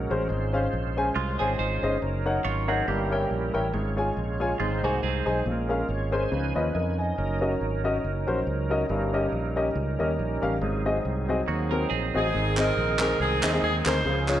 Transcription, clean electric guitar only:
0, 0, Header, 1, 2, 480
1, 0, Start_track
1, 0, Tempo, 429799
1, 332, Time_signature, 4, 2, 24, 8
1, 16082, End_track
2, 0, Start_track
2, 0, Title_t, "Clean electric guitar"
2, 0, Program_c, 0, 27
2, 1291, Note_on_c, 0, 65, 70
2, 1295, Note_on_c, 0, 56, 57
2, 1543, Note_off_c, 0, 65, 0
2, 1545, Note_off_c, 0, 56, 0
2, 1554, Note_on_c, 0, 68, 77
2, 1565, Note_on_c, 0, 60, 59
2, 1760, Note_off_c, 0, 68, 0
2, 1766, Note_off_c, 0, 60, 0
2, 1774, Note_on_c, 0, 63, 59
2, 1776, Note_on_c, 0, 72, 61
2, 2228, Note_off_c, 0, 72, 0
2, 2230, Note_off_c, 0, 63, 0
2, 2732, Note_on_c, 0, 73, 70
2, 2739, Note_on_c, 0, 65, 58
2, 2984, Note_off_c, 0, 73, 0
2, 2988, Note_off_c, 0, 65, 0
2, 2995, Note_on_c, 0, 68, 71
2, 3007, Note_on_c, 0, 60, 63
2, 3201, Note_off_c, 0, 68, 0
2, 3207, Note_off_c, 0, 60, 0
2, 3214, Note_on_c, 0, 67, 70
2, 3220, Note_on_c, 0, 58, 55
2, 3921, Note_off_c, 0, 67, 0
2, 3925, Note_off_c, 0, 58, 0
2, 5134, Note_on_c, 0, 65, 66
2, 5140, Note_on_c, 0, 56, 55
2, 5385, Note_off_c, 0, 65, 0
2, 5389, Note_off_c, 0, 56, 0
2, 5407, Note_on_c, 0, 66, 74
2, 5413, Note_on_c, 0, 58, 61
2, 5608, Note_off_c, 0, 66, 0
2, 5611, Note_off_c, 0, 58, 0
2, 5619, Note_on_c, 0, 68, 70
2, 5630, Note_on_c, 0, 60, 59
2, 6073, Note_off_c, 0, 68, 0
2, 6079, Note_off_c, 0, 60, 0
2, 12817, Note_on_c, 0, 58, 62
2, 12822, Note_on_c, 0, 66, 57
2, 13070, Note_off_c, 0, 66, 0
2, 13071, Note_off_c, 0, 58, 0
2, 13076, Note_on_c, 0, 70, 69
2, 13281, Note_off_c, 0, 70, 0
2, 13286, Note_on_c, 0, 68, 67
2, 13293, Note_on_c, 0, 60, 59
2, 13746, Note_off_c, 0, 68, 0
2, 13751, Note_off_c, 0, 60, 0
2, 16082, End_track
0, 0, End_of_file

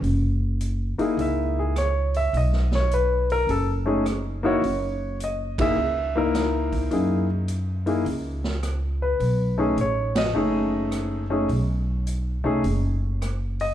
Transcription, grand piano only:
0, 0, Header, 1, 2, 480
1, 0, Start_track
1, 0, Tempo, 573066
1, 26, Time_signature, 4, 2, 24, 8
1, 11511, End_track
2, 0, Start_track
2, 0, Title_t, "Grand piano"
2, 0, Program_c, 0, 0
2, 824, Note_on_c, 0, 58, 54
2, 829, Note_on_c, 0, 63, 53
2, 837, Note_on_c, 0, 64, 50
2, 842, Note_on_c, 0, 68, 51
2, 1012, Note_on_c, 0, 76, 63
2, 1313, Note_off_c, 0, 76, 0
2, 1321, Note_off_c, 0, 68, 0
2, 1333, Note_on_c, 0, 68, 56
2, 1436, Note_off_c, 0, 58, 0
2, 1439, Note_off_c, 0, 63, 0
2, 1443, Note_off_c, 0, 64, 0
2, 1478, Note_off_c, 0, 68, 0
2, 1492, Note_on_c, 0, 73, 65
2, 1793, Note_off_c, 0, 73, 0
2, 1814, Note_on_c, 0, 76, 81
2, 1959, Note_off_c, 0, 76, 0
2, 1986, Note_on_c, 0, 75, 63
2, 2281, Note_off_c, 0, 75, 0
2, 2305, Note_on_c, 0, 73, 65
2, 2445, Note_off_c, 0, 73, 0
2, 2460, Note_on_c, 0, 71, 68
2, 2758, Note_off_c, 0, 71, 0
2, 2780, Note_on_c, 0, 70, 80
2, 2922, Note_off_c, 0, 70, 0
2, 2934, Note_on_c, 0, 69, 61
2, 3121, Note_off_c, 0, 69, 0
2, 3230, Note_on_c, 0, 57, 56
2, 3233, Note_on_c, 0, 61, 54
2, 3243, Note_on_c, 0, 63, 49
2, 3244, Note_on_c, 0, 68, 60
2, 3376, Note_off_c, 0, 57, 0
2, 3378, Note_off_c, 0, 61, 0
2, 3382, Note_off_c, 0, 63, 0
2, 3383, Note_off_c, 0, 68, 0
2, 3712, Note_on_c, 0, 58, 64
2, 3720, Note_on_c, 0, 63, 60
2, 3723, Note_on_c, 0, 64, 60
2, 3729, Note_on_c, 0, 66, 69
2, 3735, Note_on_c, 0, 73, 71
2, 3857, Note_off_c, 0, 58, 0
2, 3861, Note_off_c, 0, 63, 0
2, 3863, Note_off_c, 0, 64, 0
2, 3865, Note_off_c, 0, 66, 0
2, 4331, Note_off_c, 0, 73, 0
2, 4387, Note_on_c, 0, 75, 59
2, 4680, Note_on_c, 0, 58, 53
2, 4682, Note_off_c, 0, 75, 0
2, 4685, Note_on_c, 0, 63, 48
2, 4687, Note_on_c, 0, 64, 53
2, 4697, Note_on_c, 0, 68, 56
2, 4700, Note_on_c, 0, 76, 88
2, 4821, Note_off_c, 0, 58, 0
2, 4823, Note_off_c, 0, 63, 0
2, 4824, Note_off_c, 0, 64, 0
2, 4829, Note_off_c, 0, 68, 0
2, 5156, Note_on_c, 0, 58, 58
2, 5166, Note_on_c, 0, 63, 53
2, 5166, Note_on_c, 0, 64, 57
2, 5175, Note_on_c, 0, 70, 67
2, 5293, Note_off_c, 0, 76, 0
2, 5762, Note_off_c, 0, 58, 0
2, 5767, Note_off_c, 0, 63, 0
2, 5767, Note_off_c, 0, 64, 0
2, 5771, Note_off_c, 0, 70, 0
2, 5787, Note_on_c, 0, 58, 44
2, 5788, Note_on_c, 0, 63, 43
2, 5796, Note_on_c, 0, 64, 42
2, 5803, Note_on_c, 0, 68, 54
2, 6078, Note_off_c, 0, 58, 0
2, 6079, Note_off_c, 0, 63, 0
2, 6083, Note_off_c, 0, 64, 0
2, 6086, Note_off_c, 0, 68, 0
2, 6585, Note_on_c, 0, 58, 54
2, 6589, Note_on_c, 0, 63, 45
2, 6595, Note_on_c, 0, 64, 51
2, 6600, Note_on_c, 0, 68, 53
2, 6732, Note_off_c, 0, 58, 0
2, 6734, Note_off_c, 0, 63, 0
2, 6737, Note_off_c, 0, 64, 0
2, 6740, Note_off_c, 0, 68, 0
2, 7557, Note_on_c, 0, 71, 61
2, 8021, Note_on_c, 0, 57, 56
2, 8028, Note_on_c, 0, 61, 53
2, 8032, Note_on_c, 0, 63, 49
2, 8039, Note_on_c, 0, 68, 63
2, 8159, Note_off_c, 0, 71, 0
2, 8169, Note_off_c, 0, 57, 0
2, 8172, Note_off_c, 0, 61, 0
2, 8174, Note_off_c, 0, 63, 0
2, 8178, Note_off_c, 0, 68, 0
2, 8217, Note_on_c, 0, 73, 63
2, 8514, Note_off_c, 0, 73, 0
2, 8524, Note_on_c, 0, 75, 76
2, 8665, Note_on_c, 0, 57, 57
2, 8672, Note_on_c, 0, 61, 51
2, 8678, Note_on_c, 0, 63, 54
2, 8683, Note_on_c, 0, 68, 59
2, 9121, Note_off_c, 0, 75, 0
2, 9402, Note_off_c, 0, 57, 0
2, 9406, Note_off_c, 0, 61, 0
2, 9409, Note_off_c, 0, 63, 0
2, 9411, Note_off_c, 0, 68, 0
2, 9465, Note_on_c, 0, 57, 56
2, 9470, Note_on_c, 0, 61, 50
2, 9476, Note_on_c, 0, 63, 46
2, 9481, Note_on_c, 0, 68, 57
2, 9610, Note_off_c, 0, 57, 0
2, 9612, Note_off_c, 0, 61, 0
2, 9616, Note_off_c, 0, 63, 0
2, 9618, Note_off_c, 0, 68, 0
2, 10419, Note_on_c, 0, 57, 58
2, 10424, Note_on_c, 0, 61, 47
2, 10429, Note_on_c, 0, 63, 50
2, 10436, Note_on_c, 0, 68, 70
2, 10566, Note_off_c, 0, 57, 0
2, 10569, Note_off_c, 0, 61, 0
2, 10571, Note_off_c, 0, 63, 0
2, 10575, Note_off_c, 0, 68, 0
2, 11399, Note_on_c, 0, 75, 78
2, 11511, Note_off_c, 0, 75, 0
2, 11511, End_track
0, 0, End_of_file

